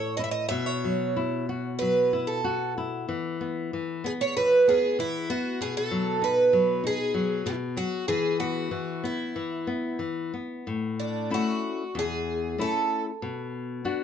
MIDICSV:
0, 0, Header, 1, 3, 480
1, 0, Start_track
1, 0, Key_signature, 4, "major"
1, 0, Tempo, 645856
1, 369, Time_signature, 4, 2, 24, 8
1, 2766, Tempo, 624350
1, 6606, Tempo, 649351
1, 8042, Key_signature, 3, "major"
1, 8526, Tempo, 636267
1, 10580, End_track
2, 0, Start_track
2, 0, Title_t, "Twelve-string acoustic guitar"
2, 0, Program_c, 0, 25
2, 0, Note_on_c, 0, 73, 74
2, 114, Note_off_c, 0, 73, 0
2, 126, Note_on_c, 0, 75, 80
2, 174, Note_off_c, 0, 75, 0
2, 177, Note_on_c, 0, 76, 67
2, 230, Note_off_c, 0, 76, 0
2, 233, Note_on_c, 0, 75, 78
2, 358, Note_off_c, 0, 75, 0
2, 361, Note_on_c, 0, 76, 90
2, 491, Note_off_c, 0, 76, 0
2, 491, Note_on_c, 0, 73, 82
2, 1325, Note_off_c, 0, 73, 0
2, 1328, Note_on_c, 0, 71, 80
2, 1661, Note_off_c, 0, 71, 0
2, 1688, Note_on_c, 0, 69, 60
2, 2024, Note_off_c, 0, 69, 0
2, 3027, Note_on_c, 0, 68, 77
2, 3065, Note_off_c, 0, 68, 0
2, 3141, Note_on_c, 0, 73, 88
2, 3250, Note_off_c, 0, 73, 0
2, 3262, Note_on_c, 0, 71, 91
2, 3505, Note_off_c, 0, 71, 0
2, 3508, Note_on_c, 0, 68, 79
2, 3744, Note_off_c, 0, 68, 0
2, 3747, Note_on_c, 0, 64, 79
2, 3967, Note_off_c, 0, 64, 0
2, 3980, Note_on_c, 0, 66, 83
2, 4201, Note_off_c, 0, 66, 0
2, 4223, Note_on_c, 0, 68, 88
2, 4338, Note_off_c, 0, 68, 0
2, 4341, Note_on_c, 0, 69, 86
2, 4697, Note_off_c, 0, 69, 0
2, 4701, Note_on_c, 0, 71, 81
2, 5181, Note_off_c, 0, 71, 0
2, 5184, Note_on_c, 0, 68, 91
2, 5645, Note_on_c, 0, 64, 72
2, 5665, Note_off_c, 0, 68, 0
2, 5709, Note_off_c, 0, 64, 0
2, 5882, Note_on_c, 0, 66, 82
2, 6114, Note_off_c, 0, 66, 0
2, 6117, Note_on_c, 0, 68, 85
2, 6358, Note_off_c, 0, 68, 0
2, 6361, Note_on_c, 0, 66, 77
2, 6853, Note_off_c, 0, 66, 0
2, 6854, Note_on_c, 0, 64, 60
2, 7535, Note_off_c, 0, 64, 0
2, 8291, Note_on_c, 0, 62, 57
2, 8511, Note_off_c, 0, 62, 0
2, 8547, Note_on_c, 0, 66, 74
2, 9032, Note_off_c, 0, 66, 0
2, 9035, Note_on_c, 0, 68, 81
2, 9504, Note_off_c, 0, 68, 0
2, 9507, Note_on_c, 0, 69, 77
2, 9832, Note_off_c, 0, 69, 0
2, 10580, End_track
3, 0, Start_track
3, 0, Title_t, "Nylon-string guitar"
3, 0, Program_c, 1, 24
3, 0, Note_on_c, 1, 45, 57
3, 0, Note_on_c, 1, 69, 43
3, 127, Note_off_c, 1, 69, 0
3, 141, Note_on_c, 1, 64, 41
3, 341, Note_off_c, 1, 45, 0
3, 369, Note_off_c, 1, 64, 0
3, 378, Note_on_c, 1, 47, 58
3, 628, Note_on_c, 1, 54, 46
3, 856, Note_off_c, 1, 54, 0
3, 866, Note_on_c, 1, 64, 49
3, 1095, Note_off_c, 1, 64, 0
3, 1108, Note_on_c, 1, 66, 48
3, 1332, Note_off_c, 1, 66, 0
3, 1349, Note_on_c, 1, 54, 50
3, 1571, Note_off_c, 1, 54, 0
3, 1583, Note_on_c, 1, 64, 49
3, 1809, Note_off_c, 1, 64, 0
3, 1817, Note_on_c, 1, 66, 53
3, 2046, Note_off_c, 1, 66, 0
3, 2063, Note_on_c, 1, 64, 47
3, 2263, Note_off_c, 1, 47, 0
3, 2289, Note_off_c, 1, 64, 0
3, 2293, Note_on_c, 1, 52, 54
3, 2532, Note_on_c, 1, 59, 49
3, 2760, Note_off_c, 1, 59, 0
3, 2766, Note_off_c, 1, 52, 0
3, 2775, Note_on_c, 1, 52, 49
3, 3007, Note_off_c, 1, 52, 0
3, 3012, Note_on_c, 1, 59, 52
3, 3248, Note_off_c, 1, 59, 0
3, 3268, Note_on_c, 1, 52, 49
3, 3497, Note_off_c, 1, 52, 0
3, 3500, Note_on_c, 1, 59, 50
3, 3734, Note_off_c, 1, 59, 0
3, 3739, Note_on_c, 1, 52, 54
3, 3973, Note_off_c, 1, 52, 0
3, 3977, Note_on_c, 1, 59, 48
3, 4209, Note_off_c, 1, 59, 0
3, 4216, Note_on_c, 1, 47, 58
3, 4451, Note_on_c, 1, 54, 53
3, 4684, Note_off_c, 1, 54, 0
3, 4684, Note_on_c, 1, 63, 49
3, 4919, Note_off_c, 1, 63, 0
3, 4925, Note_on_c, 1, 54, 51
3, 5158, Note_off_c, 1, 54, 0
3, 5161, Note_on_c, 1, 63, 49
3, 5394, Note_off_c, 1, 63, 0
3, 5395, Note_on_c, 1, 54, 50
3, 5630, Note_off_c, 1, 47, 0
3, 5631, Note_off_c, 1, 54, 0
3, 5639, Note_on_c, 1, 47, 54
3, 5873, Note_off_c, 1, 47, 0
3, 5876, Note_on_c, 1, 54, 50
3, 6111, Note_off_c, 1, 54, 0
3, 6122, Note_on_c, 1, 52, 59
3, 6361, Note_on_c, 1, 59, 49
3, 6593, Note_off_c, 1, 52, 0
3, 6597, Note_off_c, 1, 59, 0
3, 6602, Note_on_c, 1, 52, 50
3, 6831, Note_off_c, 1, 52, 0
3, 6842, Note_on_c, 1, 59, 47
3, 7070, Note_off_c, 1, 59, 0
3, 7080, Note_on_c, 1, 52, 49
3, 7310, Note_off_c, 1, 52, 0
3, 7312, Note_on_c, 1, 59, 52
3, 7548, Note_on_c, 1, 52, 49
3, 7549, Note_off_c, 1, 59, 0
3, 7789, Note_off_c, 1, 52, 0
3, 7803, Note_on_c, 1, 59, 45
3, 8036, Note_off_c, 1, 59, 0
3, 8050, Note_on_c, 1, 45, 53
3, 8512, Note_off_c, 1, 45, 0
3, 8519, Note_on_c, 1, 57, 43
3, 8522, Note_on_c, 1, 61, 39
3, 8525, Note_on_c, 1, 64, 49
3, 8907, Note_off_c, 1, 57, 0
3, 8909, Note_off_c, 1, 61, 0
3, 8910, Note_off_c, 1, 64, 0
3, 9005, Note_on_c, 1, 40, 61
3, 9471, Note_off_c, 1, 40, 0
3, 9484, Note_on_c, 1, 57, 42
3, 9488, Note_on_c, 1, 61, 41
3, 9492, Note_on_c, 1, 64, 45
3, 9868, Note_off_c, 1, 57, 0
3, 9870, Note_off_c, 1, 61, 0
3, 9873, Note_off_c, 1, 64, 0
3, 9966, Note_on_c, 1, 47, 58
3, 10429, Note_off_c, 1, 47, 0
3, 10437, Note_on_c, 1, 59, 41
3, 10439, Note_on_c, 1, 62, 43
3, 10441, Note_on_c, 1, 66, 50
3, 10580, Note_off_c, 1, 59, 0
3, 10580, Note_off_c, 1, 62, 0
3, 10580, Note_off_c, 1, 66, 0
3, 10580, End_track
0, 0, End_of_file